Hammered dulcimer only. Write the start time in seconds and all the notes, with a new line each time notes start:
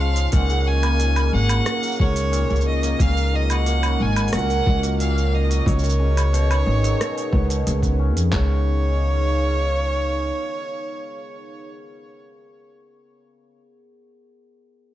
Already playing: C#3 G#3 B3 C#4
0.00 F3
0.32 A#2
0.49 C#3
0.66 F#3
0.83 A#3
0.99 A#2
1.32 C#3
1.49 F#3
1.66 A#3
1.83 F#3
1.99 C#3
2.32 A#2
2.49 C#3
2.66 F#3
2.83 A#3
2.99 A#2
3.33 D#3
3.50 F#3
3.66 A#3
3.83 F#3
3.99 D#3
4.33 A#2
4.49 D#3
4.66 F#3
4.83 A#3
4.99 A#2
5.33 D#3
5.49 F#3
5.66 F#3
5.83 D#3
5.99 C#3
6.33 B2
6.49 C#3
6.66 D#3
6.83 F#3
6.99 B2
7.32 B3
7.49 B2
7.66 C#3
7.82 B3
7.99 C#4
8.33 C#3